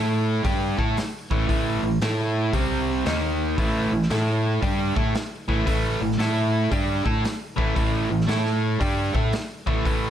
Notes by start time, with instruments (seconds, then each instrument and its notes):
Already playing: fingered electric bass A2, overdriven electric guitar A3 E4 A4
0.44 fingered electric bass G2, overdriven electric guitar G3 D4 G4, kick, open hi-hat
0.78 fingered electric bass A2, overdriven electric guitar A3 E4 A4, kick
0.97 muted overdriven electric guitar stroke, muted fingered electric bass stroke, snare, open hi-hat
1.31 fingered electric bass A1, overdriven electric guitar A2 E3 A3, kick
1.49 fingered electric bass A1, overdriven electric guitar A2 E3 A3, kick, open hi-hat
1.82 fingered electric bass A1, overdriven electric guitar A2 E3
2.00 fingered electric bass A2, overdriven electric guitar A3 E4 A4, snare, open hi-hat
2.53 fingered electric bass C2, overdriven electric guitar C3 G3 C4, kick, open hi-hat
3.06 fingered electric bass D#2, overdriven electric guitar D#3 A#3 D#4, snare, open hi-hat
3.58 fingered electric bass A1, overdriven electric guitar A2 E3 A3, kick, open hi-hat
3.91 fingered electric bass A1, overdriven electric guitar A2 E3
4.02 snare
4.10 fingered electric bass A2, overdriven electric guitar A3 E4 A4, snare, open hi-hat
4.62 fingered electric bass G2, overdriven electric guitar G3 D4 G4, kick, open hi-hat
4.96 fingered electric bass A2, overdriven electric guitar A3 E4 A4, kick
5.14 muted fingered electric bass stroke, muted overdriven electric guitar stroke, snare, open hi-hat
5.48 fingered electric bass A1, overdriven electric guitar A2 E3 A3, kick
5.66 fingered electric bass A1, overdriven electric guitar A2 E3 A3, kick, open hi-hat
6.00 fingered electric bass A1, overdriven electric guitar A2 E3
6.11 snare
6.18 fingered electric bass A2, overdriven electric guitar A3 E4 A4, snare, open hi-hat
6.71 fingered electric bass G2, overdriven electric guitar G3 D4 G4, kick, open hi-hat
7.05 fingered electric bass A2, overdriven electric guitar A3 E4 A4, kick
7.24 muted overdriven electric guitar stroke, muted fingered electric bass stroke, snare, open hi-hat
7.56 fingered electric bass A1, overdriven electric guitar A2 E3 A3, kick
7.75 fingered electric bass A1, overdriven electric guitar A2 E3 A3, kick, open hi-hat
8.10 fingered electric bass A1, overdriven electric guitar A2 E3
8.21 snare
8.28 fingered electric bass A2, overdriven electric guitar A3 E4 A4, snare, open hi-hat
8.46 snare
8.80 fingered electric bass G2, overdriven electric guitar G3 D4 G4, kick, open hi-hat
9.14 fingered electric bass A2, overdriven electric guitar A3 E4 A4, kick
9.33 muted fingered electric bass stroke, muted overdriven electric guitar stroke, snare, open hi-hat
9.66 fingered electric bass A1, overdriven electric guitar A2 E3 A3, kick
9.85 fingered electric bass A1, overdriven electric guitar A2 E3 A3, kick, open hi-hat